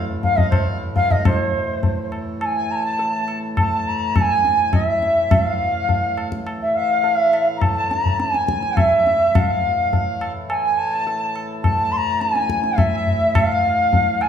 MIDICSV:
0, 0, Header, 1, 5, 480
1, 0, Start_track
1, 0, Tempo, 580833
1, 1031, Time_signature, 7, 2, 24, 8
1, 5347, Tempo, 574163
1, 11881, End_track
2, 0, Start_track
2, 0, Title_t, "Bansuri"
2, 0, Program_c, 0, 73
2, 194, Note_on_c, 0, 77, 103
2, 302, Note_on_c, 0, 75, 92
2, 314, Note_off_c, 0, 77, 0
2, 411, Note_off_c, 0, 75, 0
2, 416, Note_on_c, 0, 72, 62
2, 534, Note_off_c, 0, 72, 0
2, 791, Note_on_c, 0, 77, 110
2, 919, Note_on_c, 0, 75, 92
2, 931, Note_off_c, 0, 77, 0
2, 1035, Note_off_c, 0, 75, 0
2, 1043, Note_on_c, 0, 72, 80
2, 1726, Note_off_c, 0, 72, 0
2, 1989, Note_on_c, 0, 81, 76
2, 2028, Note_on_c, 0, 80, 82
2, 2036, Note_off_c, 0, 81, 0
2, 2241, Note_on_c, 0, 82, 91
2, 2253, Note_off_c, 0, 80, 0
2, 2274, Note_on_c, 0, 81, 99
2, 2282, Note_off_c, 0, 82, 0
2, 2717, Note_off_c, 0, 81, 0
2, 2967, Note_on_c, 0, 81, 97
2, 3204, Note_on_c, 0, 82, 86
2, 3217, Note_off_c, 0, 81, 0
2, 3439, Note_on_c, 0, 81, 87
2, 3452, Note_off_c, 0, 82, 0
2, 3478, Note_on_c, 0, 80, 95
2, 3487, Note_off_c, 0, 81, 0
2, 3910, Note_off_c, 0, 80, 0
2, 3914, Note_on_c, 0, 75, 86
2, 4005, Note_off_c, 0, 75, 0
2, 4005, Note_on_c, 0, 76, 86
2, 4391, Note_off_c, 0, 76, 0
2, 4391, Note_on_c, 0, 76, 86
2, 4499, Note_off_c, 0, 76, 0
2, 4499, Note_on_c, 0, 77, 86
2, 5108, Note_off_c, 0, 77, 0
2, 5471, Note_on_c, 0, 76, 78
2, 5585, Note_on_c, 0, 77, 86
2, 5598, Note_off_c, 0, 76, 0
2, 5928, Note_off_c, 0, 77, 0
2, 5928, Note_on_c, 0, 76, 86
2, 6190, Note_off_c, 0, 76, 0
2, 6265, Note_on_c, 0, 82, 70
2, 6309, Note_on_c, 0, 81, 94
2, 6321, Note_off_c, 0, 82, 0
2, 6550, Note_on_c, 0, 82, 90
2, 6562, Note_off_c, 0, 81, 0
2, 6791, Note_on_c, 0, 80, 90
2, 6803, Note_off_c, 0, 82, 0
2, 7275, Note_on_c, 0, 76, 86
2, 7288, Note_off_c, 0, 80, 0
2, 7755, Note_on_c, 0, 77, 84
2, 7767, Note_off_c, 0, 76, 0
2, 8476, Note_off_c, 0, 77, 0
2, 8711, Note_on_c, 0, 80, 84
2, 8948, Note_on_c, 0, 81, 102
2, 8961, Note_off_c, 0, 80, 0
2, 9431, Note_off_c, 0, 81, 0
2, 9666, Note_on_c, 0, 81, 105
2, 9903, Note_on_c, 0, 84, 90
2, 9915, Note_off_c, 0, 81, 0
2, 9944, Note_on_c, 0, 82, 98
2, 9952, Note_off_c, 0, 84, 0
2, 10146, Note_on_c, 0, 80, 98
2, 10158, Note_off_c, 0, 82, 0
2, 10620, Note_on_c, 0, 76, 96
2, 10633, Note_off_c, 0, 80, 0
2, 11106, Note_on_c, 0, 77, 103
2, 11118, Note_off_c, 0, 76, 0
2, 11824, Note_on_c, 0, 80, 87
2, 11837, Note_off_c, 0, 77, 0
2, 11881, Note_off_c, 0, 80, 0
2, 11881, End_track
3, 0, Start_track
3, 0, Title_t, "Harmonium"
3, 0, Program_c, 1, 20
3, 310, Note_on_c, 1, 77, 68
3, 645, Note_off_c, 1, 77, 0
3, 919, Note_on_c, 1, 77, 64
3, 1037, Note_on_c, 1, 75, 61
3, 1039, Note_off_c, 1, 77, 0
3, 1146, Note_off_c, 1, 75, 0
3, 2114, Note_on_c, 1, 80, 66
3, 2337, Note_off_c, 1, 80, 0
3, 2354, Note_on_c, 1, 81, 67
3, 2800, Note_off_c, 1, 81, 0
3, 3076, Note_on_c, 1, 81, 70
3, 3552, Note_on_c, 1, 80, 69
3, 3568, Note_off_c, 1, 81, 0
3, 3998, Note_off_c, 1, 80, 0
3, 4032, Note_on_c, 1, 76, 55
3, 4509, Note_on_c, 1, 77, 53
3, 4525, Note_off_c, 1, 76, 0
3, 5193, Note_off_c, 1, 77, 0
3, 5584, Note_on_c, 1, 76, 55
3, 5707, Note_on_c, 1, 77, 68
3, 5710, Note_off_c, 1, 76, 0
3, 6277, Note_off_c, 1, 77, 0
3, 6434, Note_on_c, 1, 81, 70
3, 6908, Note_on_c, 1, 80, 75
3, 6929, Note_off_c, 1, 81, 0
3, 7389, Note_on_c, 1, 76, 56
3, 7407, Note_off_c, 1, 80, 0
3, 7880, Note_on_c, 1, 77, 55
3, 7888, Note_off_c, 1, 76, 0
3, 8565, Note_off_c, 1, 77, 0
3, 8835, Note_on_c, 1, 80, 59
3, 9075, Note_on_c, 1, 81, 70
3, 9083, Note_off_c, 1, 80, 0
3, 9521, Note_off_c, 1, 81, 0
3, 9799, Note_on_c, 1, 81, 74
3, 10281, Note_on_c, 1, 80, 67
3, 10289, Note_off_c, 1, 81, 0
3, 10758, Note_on_c, 1, 76, 61
3, 10769, Note_off_c, 1, 80, 0
3, 11236, Note_on_c, 1, 77, 58
3, 11246, Note_off_c, 1, 76, 0
3, 11881, Note_off_c, 1, 77, 0
3, 11881, End_track
4, 0, Start_track
4, 0, Title_t, "Harmonium"
4, 0, Program_c, 2, 20
4, 0, Note_on_c, 2, 45, 71
4, 0, Note_on_c, 2, 52, 65
4, 1013, Note_off_c, 2, 52, 0
4, 1016, Note_off_c, 2, 45, 0
4, 1026, Note_on_c, 2, 52, 65
4, 1028, Note_on_c, 2, 45, 66
4, 11881, Note_off_c, 2, 45, 0
4, 11881, Note_off_c, 2, 52, 0
4, 11881, End_track
5, 0, Start_track
5, 0, Title_t, "Tabla"
5, 192, Note_on_c, 9, 63, 66
5, 192, Note_on_c, 9, 64, 63
5, 275, Note_off_c, 9, 63, 0
5, 275, Note_off_c, 9, 64, 0
5, 313, Note_on_c, 9, 63, 72
5, 313, Note_on_c, 9, 64, 65
5, 396, Note_off_c, 9, 63, 0
5, 396, Note_off_c, 9, 64, 0
5, 430, Note_on_c, 9, 60, 90
5, 430, Note_on_c, 9, 64, 85
5, 513, Note_off_c, 9, 60, 0
5, 513, Note_off_c, 9, 64, 0
5, 791, Note_on_c, 9, 63, 68
5, 791, Note_on_c, 9, 64, 65
5, 874, Note_off_c, 9, 63, 0
5, 874, Note_off_c, 9, 64, 0
5, 913, Note_on_c, 9, 63, 70
5, 913, Note_on_c, 9, 64, 67
5, 996, Note_off_c, 9, 63, 0
5, 996, Note_off_c, 9, 64, 0
5, 1036, Note_on_c, 9, 60, 99
5, 1036, Note_on_c, 9, 64, 92
5, 1118, Note_off_c, 9, 60, 0
5, 1118, Note_off_c, 9, 64, 0
5, 1513, Note_on_c, 9, 63, 83
5, 1513, Note_on_c, 9, 64, 73
5, 1596, Note_off_c, 9, 63, 0
5, 1596, Note_off_c, 9, 64, 0
5, 1752, Note_on_c, 9, 60, 65
5, 1834, Note_off_c, 9, 60, 0
5, 1993, Note_on_c, 9, 60, 67
5, 2075, Note_off_c, 9, 60, 0
5, 2473, Note_on_c, 9, 63, 79
5, 2555, Note_off_c, 9, 63, 0
5, 2710, Note_on_c, 9, 60, 61
5, 2792, Note_off_c, 9, 60, 0
5, 2951, Note_on_c, 9, 60, 75
5, 2951, Note_on_c, 9, 64, 64
5, 3034, Note_off_c, 9, 60, 0
5, 3034, Note_off_c, 9, 64, 0
5, 3435, Note_on_c, 9, 60, 72
5, 3435, Note_on_c, 9, 64, 68
5, 3517, Note_off_c, 9, 60, 0
5, 3517, Note_off_c, 9, 64, 0
5, 3675, Note_on_c, 9, 62, 55
5, 3758, Note_off_c, 9, 62, 0
5, 3908, Note_on_c, 9, 60, 78
5, 3908, Note_on_c, 9, 64, 70
5, 3991, Note_off_c, 9, 60, 0
5, 3991, Note_off_c, 9, 64, 0
5, 4152, Note_on_c, 9, 62, 52
5, 4235, Note_off_c, 9, 62, 0
5, 4390, Note_on_c, 9, 60, 103
5, 4390, Note_on_c, 9, 64, 92
5, 4472, Note_off_c, 9, 60, 0
5, 4472, Note_off_c, 9, 64, 0
5, 4866, Note_on_c, 9, 63, 76
5, 4866, Note_on_c, 9, 64, 67
5, 4949, Note_off_c, 9, 63, 0
5, 4949, Note_off_c, 9, 64, 0
5, 5103, Note_on_c, 9, 60, 57
5, 5186, Note_off_c, 9, 60, 0
5, 5222, Note_on_c, 9, 37, 53
5, 5305, Note_off_c, 9, 37, 0
5, 5343, Note_on_c, 9, 60, 79
5, 5427, Note_off_c, 9, 60, 0
5, 5822, Note_on_c, 9, 63, 76
5, 5906, Note_off_c, 9, 63, 0
5, 6068, Note_on_c, 9, 60, 61
5, 6152, Note_off_c, 9, 60, 0
5, 6304, Note_on_c, 9, 60, 67
5, 6304, Note_on_c, 9, 64, 67
5, 6388, Note_off_c, 9, 60, 0
5, 6388, Note_off_c, 9, 64, 0
5, 6551, Note_on_c, 9, 62, 60
5, 6635, Note_off_c, 9, 62, 0
5, 6672, Note_on_c, 9, 64, 52
5, 6755, Note_off_c, 9, 64, 0
5, 6789, Note_on_c, 9, 62, 78
5, 6873, Note_off_c, 9, 62, 0
5, 6913, Note_on_c, 9, 62, 52
5, 6996, Note_off_c, 9, 62, 0
5, 7031, Note_on_c, 9, 37, 58
5, 7114, Note_off_c, 9, 37, 0
5, 7149, Note_on_c, 9, 62, 51
5, 7232, Note_off_c, 9, 62, 0
5, 7270, Note_on_c, 9, 60, 74
5, 7270, Note_on_c, 9, 64, 67
5, 7353, Note_off_c, 9, 60, 0
5, 7353, Note_off_c, 9, 64, 0
5, 7517, Note_on_c, 9, 62, 54
5, 7600, Note_off_c, 9, 62, 0
5, 7756, Note_on_c, 9, 60, 100
5, 7756, Note_on_c, 9, 64, 92
5, 7840, Note_off_c, 9, 60, 0
5, 7840, Note_off_c, 9, 64, 0
5, 8239, Note_on_c, 9, 63, 76
5, 8239, Note_on_c, 9, 64, 74
5, 8323, Note_off_c, 9, 63, 0
5, 8323, Note_off_c, 9, 64, 0
5, 8476, Note_on_c, 9, 60, 64
5, 8560, Note_off_c, 9, 60, 0
5, 8714, Note_on_c, 9, 60, 77
5, 8797, Note_off_c, 9, 60, 0
5, 9191, Note_on_c, 9, 63, 75
5, 9275, Note_off_c, 9, 63, 0
5, 9431, Note_on_c, 9, 60, 59
5, 9515, Note_off_c, 9, 60, 0
5, 9670, Note_on_c, 9, 60, 68
5, 9670, Note_on_c, 9, 64, 74
5, 9754, Note_off_c, 9, 60, 0
5, 9754, Note_off_c, 9, 64, 0
5, 10147, Note_on_c, 9, 62, 70
5, 10231, Note_off_c, 9, 62, 0
5, 10266, Note_on_c, 9, 62, 58
5, 10349, Note_off_c, 9, 62, 0
5, 10383, Note_on_c, 9, 37, 65
5, 10467, Note_off_c, 9, 37, 0
5, 10502, Note_on_c, 9, 62, 53
5, 10586, Note_off_c, 9, 62, 0
5, 10621, Note_on_c, 9, 60, 76
5, 10621, Note_on_c, 9, 64, 72
5, 10705, Note_off_c, 9, 60, 0
5, 10705, Note_off_c, 9, 64, 0
5, 10863, Note_on_c, 9, 64, 51
5, 10947, Note_off_c, 9, 64, 0
5, 11100, Note_on_c, 9, 60, 101
5, 11100, Note_on_c, 9, 64, 89
5, 11184, Note_off_c, 9, 60, 0
5, 11184, Note_off_c, 9, 64, 0
5, 11582, Note_on_c, 9, 63, 74
5, 11582, Note_on_c, 9, 64, 69
5, 11665, Note_off_c, 9, 63, 0
5, 11665, Note_off_c, 9, 64, 0
5, 11819, Note_on_c, 9, 60, 54
5, 11881, Note_off_c, 9, 60, 0
5, 11881, End_track
0, 0, End_of_file